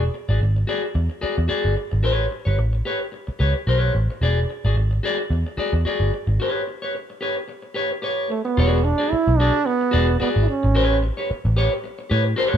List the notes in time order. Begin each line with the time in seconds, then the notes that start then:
0.14 muted clean electric guitar stroke
0.29 G#1 F#4 G#4 D5
0.41 G#1, muted clean electric guitar stroke
0.56 muted clean electric guitar stroke
0.67 F#4 G#4 D5
0.83 muted clean electric guitar stroke
0.95 E2, muted clean electric guitar stroke
1.10 muted clean electric guitar stroke
1.21 F#4 G#4 D5, muted picked electric bass stroke
1.37 E2, muted clean electric guitar stroke
1.48 F#4 G#4 D5, muted picked electric bass stroke
1.65 G1
1.76 muted clean electric guitar stroke
1.91 G#1, muted clean electric guitar stroke
2.03 A1 G4 B4 C#5
2.31 muted clean electric guitar stroke
2.45 G1 G4 B4 C#5
2.58 A1, muted clean electric guitar stroke
2.73 muted clean electric guitar stroke
2.85 G4 B4 C#5
3.00 muted clean electric guitar stroke
3.12 muted clean electric guitar stroke
3.27 muted clean electric guitar stroke, muted picked electric bass stroke
3.39 C#2 G4 B4 C#5
3.54 muted clean electric guitar stroke
3.67 B1 F#4 B4 C#5
3.78 G4
3.94 A1, muted clean electric guitar stroke
4.10 muted clean electric guitar stroke
4.21 E1 F#4 G#4 D5
4.49 muted clean electric guitar stroke
4.65 G#1 F#4 G#4 D5
4.76 G#1, muted clean electric guitar stroke
4.91 muted clean electric guitar stroke
5.03 F#4 G#4 D5
5.19 muted clean electric guitar stroke
5.30 E2, muted clean electric guitar stroke
5.46 muted clean electric guitar stroke
5.57 F#4 G#4 D5, muted picked electric bass stroke
5.73 E2, muted clean electric guitar stroke
5.85 F#4 G#4 D5, muted picked electric bass stroke
6.00 G1
6.13 muted clean electric guitar stroke
6.27 G#1, muted clean electric guitar stroke
6.40 G4 B4 C#5
6.67 muted clean electric guitar stroke
6.82 G4 B4 C#5
6.95 muted clean electric guitar stroke
7.10 muted clean electric guitar stroke
7.21 G4 B4 C#5
7.36 muted clean electric guitar stroke
7.48 muted clean electric guitar stroke
7.62 muted clean electric guitar stroke
7.74 G4 B4 C#5
7.91 muted clean electric guitar stroke
8.02 G4 B4 C#5
8.29 A3, muted clean electric guitar stroke
8.45 B3, muted clean electric guitar stroke
8.57 E1 F#4 G#4 D5
8.84 D4, muted clean electric guitar stroke
8.98 F#4 G#4 D5
9.11 E4, muted clean electric guitar stroke, muted picked electric bass stroke
9.27 B1, muted clean electric guitar stroke
9.38 D4 F#4 G#4 D5
9.55 muted clean electric guitar stroke
9.66 B3, muted clean electric guitar stroke
9.81 muted clean electric guitar stroke
9.91 E1 F#4 G#4 D5
10.09 muted clean electric guitar stroke
10.20 B3 F#4 G#4 D5, muted picked electric bass stroke
10.36 G#1
10.41 E4
10.48 C#4, muted clean electric guitar stroke
10.63 G#1, muted clean electric guitar stroke
10.75 A1 G4 B4 C#5
11.02 muted clean electric guitar stroke
11.17 G4 B4 C#5
11.30 muted clean electric guitar stroke, muted picked electric bass stroke
11.45 A1, muted clean electric guitar stroke
11.56 G4 B4 C#5
11.73 muted clean electric guitar stroke
11.84 muted clean electric guitar stroke
11.99 muted clean electric guitar stroke
12.10 A2 G4 B4 C#5
12.24 muted clean electric guitar stroke
12.36 F#4 A#4 C5
12.47 G4 B4 C#5
12.54 A2